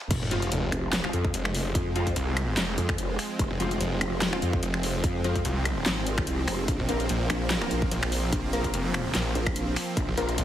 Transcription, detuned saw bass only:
0.22 F1
0.52 F1
1.34 F1
2.16 C2
2.57 F1
3.51 F1
3.80 F1
4.63 F1
5.45 C2
6.79 A#1
7.09 A#1
7.92 A#1
8.74 F1
9.15 A#1
10.08 A#1
10.38 A#1

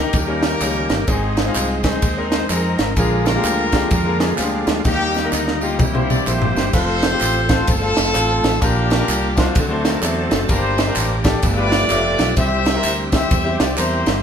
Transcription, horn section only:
Already playing: D#4
0.14 C#4 G4 A#4
1.07 C4 D#4 G#4
1.84 D#4 G#4 C5
2.31 C5
2.48 D#4 A#4
2.96 D4 F4 G#4
3.25 D4 F4 A#4
3.91 D4 F4 A#4
4.21 D4 F4 G#4
4.85 A#3 D#4 G4
5.32 D#4
5.62 F4
5.81 G3 A#3 E4
6.10 D5
6.27 E4 G4 C5
6.74 F4 A4 C5
7.69 C4 F4 A4
8.62 A#3 D4 G4
9.39 A3 C4 F#4
9.86 A#4
10.04 F#4 A4 C5
10.50 G4 C5
11.44 F4 B4 D5
12.37 G4 C5 E5
13.13 G4 C5 E5
13.59 D5
13.78 E4 G4 C5

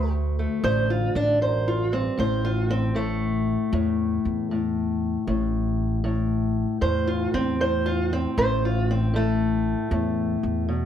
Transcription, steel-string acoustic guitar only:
Already playing: D2 A3 C5
0.39 A3
0.64 D2 C5
0.90 F4
1.16 D4
1.41 F#2 C5
1.68 F4
1.92 G2 C4
2.18 A2 C5
2.45 F4
2.71 C4
2.95 A2 A3
3.73 A2
4.51 A2
5.27 A2
6.04 A2
6.81 A2 C5
7.08 F4
7.34 C4
7.60 A2 C5
7.86 F4
8.13 C4
8.38 A2 C5
8.65 F4
8.91 C4
9.14 A2 A3
9.92 A2
10.69 B2

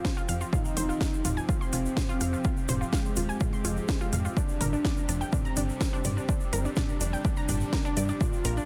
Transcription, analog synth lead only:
Already playing: F4
0.53 D#4
1.49 C4
2.93 G#3
3.41 G#3
4.37 D4
5.33 C4
6.77 D4
7.25 D4
8.21 F4

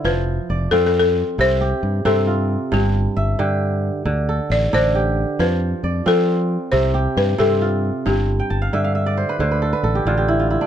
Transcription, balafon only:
0.05 B4
0.71 A4
0.86 A4
1.00 A4
1.41 C5
2.06 A4
2.74 G4
4.52 D5
4.74 C5
5.40 B4
6.08 A4
6.72 C5
7.17 B4
7.40 A4
8.07 G4

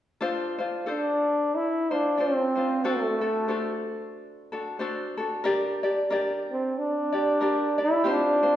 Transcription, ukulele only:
0.21 D4 F4 A4 C5
0.58 D4 F4 C5
0.86 D4 A4 C5
1.91 D4 F4 C5
2.17 D4 F4 A4 C5
2.55 D4 F4 C5
2.84 D4 F#4 A4 C5
3.21 D4 F#4 A4
3.48 D4 F#4 A4 C5
4.52 D4 F#4 A4
4.79 D4 F#4 A4 C5
5.17 D4 F#4 A4
5.44 D4 G4 A#4 D5
5.83 D4 G4 D5
6.10 D4 G4 A#4 D5
7.12 D4 G4 D5
7.41 D4 G4 A#4 D5
7.78 D4 G4 D5
8.04 C4 F4 G4 C5
8.43 C4 F4 C5

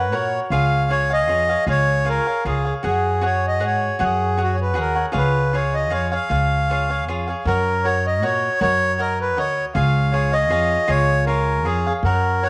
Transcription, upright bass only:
Already playing: F#2
0.13 A#2
0.50 C#2
1.29 F2
1.67 C#2
2.45 C#2
2.84 F#2
3.62 G#2
4.00 F#2
4.77 D#2
5.14 C#2
5.91 F2
6.30 C#2
7.07 F2
7.45 F#2
8.23 A#2
8.61 F#2
9.37 D2
9.75 C#2
10.50 F2
10.89 C#2
11.64 F2
12.03 F#2

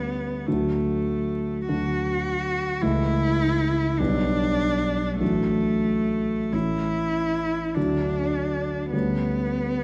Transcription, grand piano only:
Already playing: D2 G3 A3 C#4
0.48 D2 F#3 A3 D4
1.69 D2 F#3 A3 D4
2.82 C#2 E3 A3 E4
4.00 B1 G3 B3
5.20 A1 F#3 A3 D4
6.52 A1 E3 A3 C#4
7.76 D2 F#3 A3 D4
8.93 D2 G3 A3 C#4

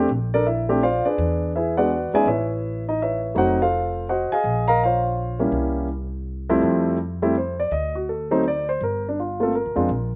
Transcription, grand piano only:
0.34 D4 A4 A#4 D5
0.46 E4 E5
0.69 A3 C4 D4 G4
0.83 F4 C5 D5 F5
1.05 D4 G#4 B4 D5
1.56 E4 G#4 B4 E5
1.77 G#3 B3 D4 F#4 B4 D5 F#5
2.14 G#3 B3 C#4 D#4 G#4 D5 E5 G#5
2.27 E4 B4 C#5 E5
2.89 D#4 D#5
3.02 E4 B4 C#5 E5
3.35 F#3 A3 C4 D#4 F#4 C5 D#5 F#5
3.62 F4 A4 C5 F5
4.09 F#4 C5 D#5 F#5
4.32 G#4 D#5 F5 G#5
4.68 A#4 D#5 F5 A#5
4.83 F4 C5 C#5 F5
5.39 G3 A#3 C#4 E4
6.49 F2 G3 A3 C4 E4
7.22 G3 A3 C4 E4
7.38 C5
7.60 D5
7.72 D#5
7.95 F#4
8.09 A4
8.31 F#3 A3 C4 D#4 C5
8.48 D5
8.69 C5
8.83 A#4
9.09 D4
9.20 F4
9.40 A3 A#3 C4 F4 A4
9.55 A#4
9.75 G#3 C4 D4 F4

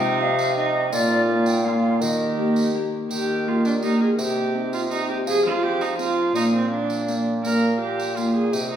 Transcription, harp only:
Already playing: C3 C5
0.20 D#4 D#5
0.56 D#4 D#5
0.92 A#2
1.28 A#3 F4 A#4
1.64 A#3 F4 A#4
2.01 D#3
2.38 A#3 G4 A#4
2.74 A#3 G4 A#4
3.11 D#3
3.47 A#3 D#4 G4
3.83 A#3 D#4 G4
4.20 C3
4.54 C4 D#4 G4
4.90 C4 D#4 G4
5.27 F3
5.63 C4 F4
5.99 C4 F4
6.32 A#2 A#3
6.37 F4
7.08 A#3 F4
7.44 A#3 F4
8.17 A#3 F4
8.54 C3

